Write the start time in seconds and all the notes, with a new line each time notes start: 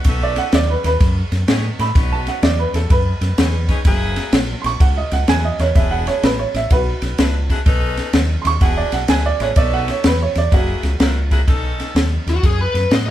Already playing: F#5
0.04 B1 B3 C#4 D#4 A4, kick, snare, ride
0.23 D5
0.36 F#5, snare, ride
0.52 D#2 D5, snare, ride
0.70 B4
0.84 D#2 B4, snare, ride
1.00 F#2, kick, snare, ride
1.32 F#2, snare, ride
1.47 A2 B3 C#4 D#4 G#4, snare, ride
1.79 A2 B3 C#4 D#4 A4 B5, snare, ride
1.95 B1 B3 C#4 D#4 F#4, kick, snare, ride
2.12 A5
2.27 F#5, snare, ride
2.43 E2 D5, snare, ride
2.59 B4
2.74 E2 A4, snare, ride
2.90 F#2 B4, kick, snare, ride
3.21 F#2, snare, ride
3.37 E2 B3 C#4 D#4 G#4, snare, ride
3.69 B3 C#4 D#4 G#4, kick, snare, ride
3.85 F#1 A#3 E4 F#4 G#4, kick, snare, ride
4.16 snare, ride
4.32 A#1, snare, ride
4.62 A#1 C6, snare, ride
4.66 C#6
4.80 C#2 F#5, kick, snare, ride
4.97 D#5
5.11 C#2 F#5, snare, ride
5.28 E2 A#3 E4 F#4 G#4 G#5, snare, ride
5.45 D#5
5.59 E2 A#3 E4 F#4 A#4 C#5, snare, ride
5.75 E1 D4 E4 F#4 G#4 E5, kick, snare, ride
5.91 F#5
6.07 C#5, snare, ride
6.23 A1 B4, snare, ride
6.39 C#5
6.54 A1 E5, snare, ride
6.70 B1 F#4 B4, kick, snare, ride
7.02 B1, snare, ride
7.18 C#2 D4 E4 F#4 B4, snare, ride
7.50 D4 E4 F#4 G#4, kick, snare, ride
7.65 B1 C#4 D#4 A4 B4, kick, snare, ride
7.97 snare, ride
8.13 D#2, snare, ride
8.42 D#2 C6, snare, ride
8.47 C#6
8.61 E1 D4 E4 F#4 G#4 F#5, kick, snare, ride
8.77 D5
8.92 B1 F#5, snare, ride
9.08 D2 D4 E4 F#4 G#4 G#5, snare, ride
9.26 D5
9.40 A1 D4 E4 F#4 G#4 C#5, snare, ride
9.56 B1 B3 C#4 D#4 A4 D5, kick, snare, ride
9.74 F#5
9.88 C#5, snare, ride
10.04 E2 B4, snare, ride
10.22 C#5
10.35 E2 D5, snare, ride
10.51 F#1 A#3 E4 F#4 G#4, kick, snare, ride
10.83 C#2, snare, ride
10.99 C#2 A#3 E4 F#4 A#4, snare, ride
11.31 A#3 E4 F#4 G#4, kick, snare, ride
11.47 B1 C#4 D#4 A4, kick, snare, ride
11.80 snare, ride
11.95 D#2, snare, ride
12.26 D#2 F#4, snare, ride
12.43 F#2 G#4, kick, snare, ride
12.61 B4
12.74 F#2, snare, ride
12.90 A2 C#4 D#4 F#4 D#5, snare, ride